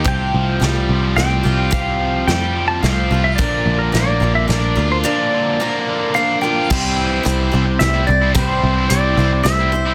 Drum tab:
CC |------|------|------|------|
HH |x-x-x-|x-x-x-|x-x-x-|------|
SD |--o-o-|--o-o-|--o-o-|------|
BD |o-----|o-----|o-----|------|

CC |x-----|------|
HH |--x-x-|x-x-x-|
SD |----o-|----o-|
BD |o-----|o-----|